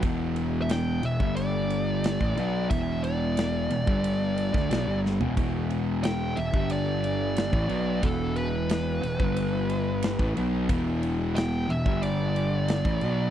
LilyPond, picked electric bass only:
\new Staff \with { instrumentName = "Picked electric bass" } { \clef bass \time 4/4 \key e \minor \tempo 4 = 90 e,,4. e,,16 g,,4. a,,16 b,,8 | e,,4. e,,16 g,,4 d,16 b,,16 g,,8 e,,16 | e,,4. e,,16 g,,4. a,,16 b,,8 | e,,4. e,,16 g,,4. a,,16 b,,8 |
e,,4. e,,16 g,,4. a,,16 b,,8 | }